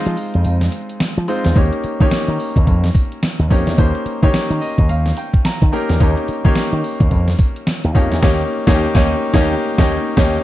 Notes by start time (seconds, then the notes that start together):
Already playing: G#3 C4 D#4 F4 G#4 C5
0.06 F3, closed hi-hat
0.17 open hi-hat
0.34 F2, closed hi-hat
0.44 F2, closed hi-hat, tambourine
0.61 snare, closed hi-hat
0.72 closed hi-hat, tambourine
0.89 closed hi-hat
1.00 snare, closed hi-hat, tambourine
1.17 F3, closed hi-hat
1.28 G#3 C4 D#4 F4 C5, open hi-hat, tambourine
1.44 E2, snare, closed hi-hat
1.56 D#2 A#3 C#4 D#4 G4 C#5, kick, closed hi-hat, tambourine
1.73 closed hi-hat
1.84 muted slap bass stroke, closed hi-hat, tambourine
2.00 D#3 A#3 C#4 D#4 G4 C#5, kick, closed hi-hat
2.11 muted slap bass stroke, snare, closed hi-hat, tambourine
2.28 D#3, closed hi-hat
2.39 open hi-hat
2.56 D#2, kick, closed hi-hat
2.67 F2, kick, closed hi-hat, tambourine
2.84 snare, closed hi-hat
2.95 kick, closed hi-hat, tambourine
3.12 closed hi-hat
3.23 snare, closed hi-hat, tambourine
3.39 D#2, closed hi-hat
3.50 F2 A#3 C#4 D#4 G4 C#5, kick, open hi-hat, tambourine
3.67 E2, snare, closed hi-hat
3.78 D#2 A#3 C#4 D#4 G4 C5, kick, closed hi-hat, tambourine
3.95 closed hi-hat
4.05 muted slap bass stroke, closed hi-hat, tambourine
4.22 D#3 A#3 C#4 D#4 G4 C#5, kick, closed hi-hat
4.33 muted slap bass stroke, snare, closed hi-hat, tambourine
4.50 D#3, closed hi-hat
4.61 D#5, open hi-hat
4.78 D#2, kick, closed hi-hat
4.89 D#2 F5, closed hi-hat, tambourine
5.06 snare, closed hi-hat
5.17 G5, closed hi-hat, tambourine
5.34 kick, closed hi-hat
5.45 A#5, snare, closed hi-hat, tambourine
5.62 D#3, kick, closed hi-hat
5.72 A#3 C#4 D#4 G4 A#4 G5, open hi-hat, tambourine
5.89 E2, snare, closed hi-hat
6.00 D#2 A#3 C#4 D#4 G4 C#5, kick, closed hi-hat, tambourine
6.17 closed hi-hat
6.28 muted slap bass stroke, closed hi-hat, tambourine
6.44 D#3 A#3 C#4 D#4 G4 C#5, kick, closed hi-hat
6.55 muted slap bass stroke, snare, closed hi-hat, tambourine
6.73 D#3, closed hi-hat
6.84 open hi-hat
7.00 D#2, kick, closed hi-hat
7.11 F2, kick, closed hi-hat, tambourine
7.28 snare, closed hi-hat
7.39 kick, closed hi-hat, tambourine
7.56 closed hi-hat
7.67 snare, closed hi-hat, tambourine
7.84 D#2, closed hi-hat
7.94 F2 A#3 C#4 D#4 G4 C#5, kick, open hi-hat, tambourine
8.12 E2, snare, closed hi-hat
8.22 D#2 A#3 C#4 D#4 G4 C#5, kick, snare, crash
8.67 D#2 A#3 C#4 D#4 C#5, kick, snare
8.74 G4
8.95 D#2 A#3 C#4 D#4 C#5, kick, snare
9.02 G4
9.33 D#2 A#3 C#4 D#4 C#5, kick, snare
9.41 G4
9.78 D#2 A#3 C#4 D#4 G4 C#5, kick, snare
10.17 D#2 A#3 C#4 D#4 G4 C#5, kick, snare, crash